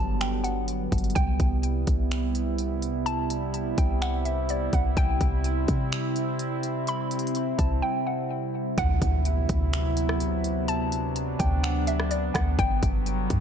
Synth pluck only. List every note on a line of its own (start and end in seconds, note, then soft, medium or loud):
0.00 0.19 A5 medium
0.21 0.43 G5 medium
0.44 1.12 F#5 medium
1.15 3.02 G5 loud
3.06 3.74 A5 loud
3.78 4.00 G5 medium
4.02 4.24 F#5 medium
4.25 4.48 E5 medium
4.50 4.72 D5 medium
4.74 4.96 F#5 medium
4.97 6.84 G5 loud
6.88 7.55 B5 loud
7.58 7.81 A5 medium
7.82 8.05 G5 medium
8.07 8.74 F#5 medium
8.78 10.64 F#5 loud
10.68 11.36 A5 loud
11.39 11.62 G5 medium
11.63 11.86 F#5 medium
11.88 12.10 E5 medium
12.11 12.34 D5 medium
12.34 12.57 F#5 medium
12.59 13.40 G5 loud